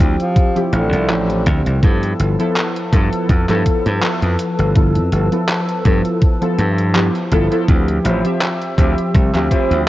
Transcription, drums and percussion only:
0.00 kick, closed hi-hat
0.20 closed hi-hat
0.36 kick, closed hi-hat
0.57 closed hi-hat
0.73 closed hi-hat
0.93 closed hi-hat
1.10 clap, closed hi-hat
1.30 closed hi-hat
1.46 kick, closed hi-hat
1.66 closed hi-hat
1.83 kick, closed hi-hat
2.03 closed hi-hat
2.20 closed hi-hat
2.40 closed hi-hat
2.56 clap, closed hi-hat
2.76 closed hi-hat
2.93 kick, closed hi-hat
3.13 closed hi-hat
3.29 kick, closed hi-hat
3.49 clap, closed hi-hat
3.66 kick, closed hi-hat
3.86 closed hi-hat
4.03 clap, closed hi-hat
4.22 closed hi-hat
4.39 closed hi-hat
4.59 closed hi-hat
4.76 kick, closed hi-hat
4.95 closed hi-hat
5.12 closed hi-hat
5.32 closed hi-hat
5.49 clap, closed hi-hat
5.69 closed hi-hat
5.85 kick, closed hi-hat
6.05 closed hi-hat
6.22 kick, closed hi-hat
6.42 closed hi-hat
6.58 closed hi-hat
6.78 closed hi-hat
6.95 clap, closed hi-hat
7.15 closed hi-hat
7.31 kick, closed hi-hat
7.51 closed hi-hat
7.68 kick, closed hi-hat
7.88 closed hi-hat
8.05 closed hi-hat
8.25 closed hi-hat
8.41 clap, closed hi-hat
8.61 closed hi-hat
8.78 kick, closed hi-hat
8.98 closed hi-hat
9.14 kick, closed hi-hat
9.35 clap, closed hi-hat
9.51 kick, closed hi-hat
9.71 closed hi-hat

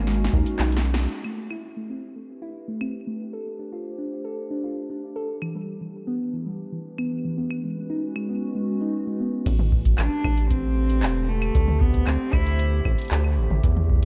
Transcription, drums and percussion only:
0.07 snare
0.14 closed hi-hat
0.24 snare
0.33 kick
0.46 closed hi-hat
0.59 snare, clap
0.72 closed hi-hat
0.77 snare
0.94 snare
0.98 closed hi-hat
1.24 claves
1.51 claves
2.81 claves
5.42 claves
6.98 claves
7.51 claves
8.16 claves
9.46 kick, closed hi-hat, crash
9.59 high tom
9.72 kick
9.85 kick, closed hi-hat
9.98 clap, closed hi-hat, claves
10.24 kick, claves
10.37 closed hi-hat
10.51 kick, closed hi-hat
10.90 closed hi-hat
11.03 clap, closed hi-hat
11.42 closed hi-hat, claves
11.55 kick, closed hi-hat
11.68 high tom
11.81 kick
11.94 kick, closed hi-hat
12.07 clap, claves
12.33 kick, claves
12.46 closed hi-hat
12.59 closed hi-hat
12.85 kick, claves
12.98 closed hi-hat
13.02 closed hi-hat
13.05 closed hi-hat
13.08 clap, closed hi-hat
13.11 closed hi-hat
13.24 claves
13.51 high tom
13.64 kick, closed hi-hat
13.77 high tom
13.90 kick
13.96 kick

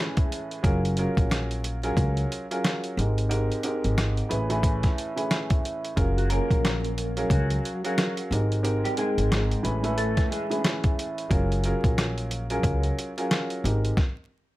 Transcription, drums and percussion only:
0.17 kick, closed hi-hat
0.32 closed hi-hat
0.51 closed hi-hat
0.64 kick, closed hi-hat
0.85 closed hi-hat
0.97 closed hi-hat
1.17 kick, closed hi-hat
1.31 cross-stick, snare, closed hi-hat
1.51 closed hi-hat
1.64 closed hi-hat
1.83 closed hi-hat
1.97 kick, closed hi-hat
2.17 closed hi-hat
2.32 closed hi-hat
2.51 closed hi-hat
2.64 cross-stick, snare, closed hi-hat
2.84 closed hi-hat
2.99 closed hi-hat
3.18 closed hi-hat
3.31 closed hi-hat
3.52 closed hi-hat
3.63 closed hi-hat
3.84 closed hi-hat
3.98 cross-stick, snare, closed hi-hat
4.17 closed hi-hat
4.31 closed hi-hat
4.50 closed hi-hat
4.63 kick, closed hi-hat
4.83 kick, snare, closed hi-hat
4.98 closed hi-hat
5.18 closed hi-hat
5.31 cross-stick, snare, closed hi-hat
5.50 kick, closed hi-hat
5.65 closed hi-hat
5.84 closed hi-hat
5.97 kick, closed hi-hat
6.18 closed hi-hat
6.30 closed hi-hat
6.51 kick, closed hi-hat
6.65 cross-stick, snare, closed hi-hat
6.85 closed hi-hat
6.98 closed hi-hat
7.17 closed hi-hat
7.30 kick, closed hi-hat
7.50 closed hi-hat
7.65 closed hi-hat
7.85 closed hi-hat
7.98 cross-stick, snare, closed hi-hat
8.17 closed hi-hat
8.32 closed hi-hat
8.52 closed hi-hat
8.65 closed hi-hat
8.85 closed hi-hat
8.97 closed hi-hat
9.18 closed hi-hat
9.32 cross-stick, snare, closed hi-hat
9.51 closed hi-hat
9.65 closed hi-hat
9.84 closed hi-hat
9.98 closed hi-hat
10.17 kick, snare, closed hi-hat
10.32 closed hi-hat
10.51 closed hi-hat
10.64 cross-stick, snare, closed hi-hat
10.84 kick, closed hi-hat
10.99 closed hi-hat
11.18 closed hi-hat
11.31 kick, closed hi-hat
11.52 closed hi-hat
11.64 closed hi-hat
11.84 kick, closed hi-hat
11.98 cross-stick, snare, closed hi-hat
12.18 closed hi-hat
12.31 closed hi-hat
12.50 closed hi-hat
12.63 kick, closed hi-hat
12.83 closed hi-hat
12.99 closed hi-hat
13.18 closed hi-hat
13.31 cross-stick, snare, closed hi-hat
13.50 closed hi-hat
13.65 closed hi-hat
13.85 closed hi-hat
13.97 kick, snare

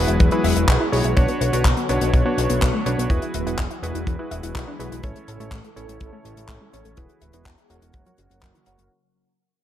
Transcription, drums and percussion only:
0.08 closed hi-hat
0.20 kick, closed hi-hat
0.31 closed hi-hat
0.44 open hi-hat
0.56 closed hi-hat
0.68 kick, clap, closed hi-hat
0.93 open hi-hat
1.04 closed hi-hat
1.17 kick, closed hi-hat
1.28 closed hi-hat
1.41 closed hi-hat
1.53 closed hi-hat
1.65 kick, clap, closed hi-hat
1.77 closed hi-hat
1.89 closed hi-hat
2.01 closed hi-hat
2.14 kick, closed hi-hat
2.38 closed hi-hat
2.50 closed hi-hat
2.62 kick, clap, closed hi-hat
2.86 closed hi-hat
2.99 closed hi-hat
3.10 kick, closed hi-hat
3.22 closed hi-hat
3.34 closed hi-hat
3.47 closed hi-hat
3.59 kick, clap, closed hi-hat
3.71 closed hi-hat
3.84 closed hi-hat
3.95 closed hi-hat
4.07 kick, closed hi-hat
4.31 closed hi-hat
4.43 closed hi-hat
4.55 kick, clap, closed hi-hat
4.80 closed hi-hat
4.92 closed hi-hat
5.03 kick, closed hi-hat
5.16 closed hi-hat
5.28 closed hi-hat
5.40 closed hi-hat
5.51 kick, clap, closed hi-hat
5.64 closed hi-hat
5.77 closed hi-hat
5.89 closed hi-hat
6.01 kick, closed hi-hat
6.25 closed hi-hat
6.37 closed hi-hat
6.49 kick, clap, closed hi-hat
6.74 closed hi-hat
6.85 closed hi-hat
6.97 kick, closed hi-hat
7.09 closed hi-hat
7.22 closed hi-hat
7.33 closed hi-hat
7.46 kick, clap, closed hi-hat
7.58 closed hi-hat
7.70 closed hi-hat
7.82 closed hi-hat
7.94 kick, closed hi-hat
8.06 closed hi-hat
8.18 closed hi-hat
8.31 closed hi-hat
8.43 kick, clap, closed hi-hat
8.55 closed hi-hat
8.66 closed hi-hat
8.79 closed hi-hat

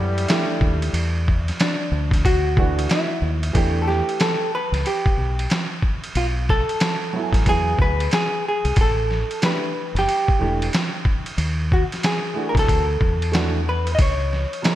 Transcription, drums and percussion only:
0.18 ride
0.28 snare, hi-hat pedal, ride
0.61 kick
0.82 ride
0.94 ride
1.28 kick
1.48 snare, ride
1.60 snare, hi-hat pedal, ride
2.11 kick, snare, ride
2.25 kick, ride
2.57 kick
2.79 ride
2.89 snare, hi-hat pedal, ride
3.43 ride
3.55 kick, ride
3.89 snare
4.09 ride
4.20 snare, hi-hat pedal, ride
4.74 snare, ride
4.86 ride
5.06 kick
5.39 ride
5.50 snare, hi-hat pedal, ride
5.82 kick
6.04 ride
6.15 ride
6.49 kick, snare
6.69 ride
6.80 snare, hi-hat pedal, ride
7.33 kick, snare, ride
7.46 kick, ride
7.79 kick
8.00 ride
8.11 snare, hi-hat pedal, ride
8.65 ride
8.76 kick, ride
9.11 snare
9.31 ride
9.42 snare, hi-hat pedal, ride
9.96 snare, ride
10.09 ride
10.28 kick
10.62 ride
10.73 snare, hi-hat pedal, ride
11.05 kick
11.26 ride
11.38 ride
11.72 kick
11.92 snare, ride
12.03 snare, hi-hat pedal, ride
12.55 kick, snare, ride
12.68 kick, ride
13.01 kick
13.22 ride
13.33 snare, hi-hat pedal, ride
13.87 ride
13.99 kick, ride
14.33 snare
14.53 ride
14.64 snare, hi-hat pedal, ride

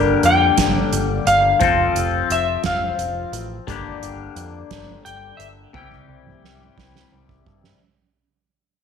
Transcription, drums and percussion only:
0.23 closed hi-hat
0.58 kick, snare, closed hi-hat
0.93 closed hi-hat
1.27 closed hi-hat
1.60 kick, closed hi-hat
1.96 closed hi-hat
2.30 closed hi-hat
2.64 kick, snare, closed hi-hat
2.99 closed hi-hat
3.33 closed hi-hat
3.68 kick, closed hi-hat
4.03 closed hi-hat
4.36 closed hi-hat
4.71 kick, snare, closed hi-hat
5.06 closed hi-hat
5.40 closed hi-hat
5.74 kick, high tom
5.92 kick
6.27 mid tom
6.44 snare
6.78 kick, snare
6.95 snare
7.29 kick
7.46 kick
7.64 snare

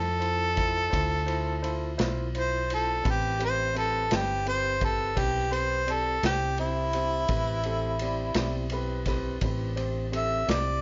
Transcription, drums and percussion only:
0.22 ride
0.57 kick, ride
0.93 kick, ride
1.28 ride
1.64 ride
1.99 snare, ride
2.35 ride
2.70 ride
3.05 kick, ride
3.40 ride
3.76 ride
4.11 snare, ride
4.47 ride
4.81 kick, ride
5.17 kick, ride
5.53 ride
5.88 ride
6.23 snare, ride
6.58 ride
6.93 ride
7.28 kick, ride
7.63 ride
7.99 ride
8.34 snare, ride
8.70 ride
9.05 kick, snare, ride
9.41 kick, ride
9.77 ride
10.13 ride
10.49 snare, ride

